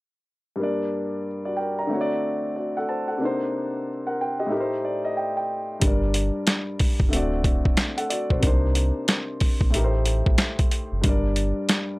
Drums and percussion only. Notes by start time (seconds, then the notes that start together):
5.82 kick, closed hi-hat
6.14 closed hi-hat
6.47 snare, closed hi-hat
6.79 kick, open hi-hat
7.00 kick
7.13 closed hi-hat
7.44 kick, closed hi-hat
7.65 kick
7.77 snare, closed hi-hat
7.98 closed hi-hat
8.10 closed hi-hat
8.30 kick
8.43 kick, closed hi-hat
8.75 closed hi-hat
9.08 snare, closed hi-hat
9.40 kick, open hi-hat
9.61 kick
9.74 closed hi-hat
10.06 closed hi-hat
10.26 kick
10.38 snare, closed hi-hat
10.59 kick, closed hi-hat
10.71 closed hi-hat
11.04 kick, closed hi-hat
11.36 closed hi-hat
11.69 snare, closed hi-hat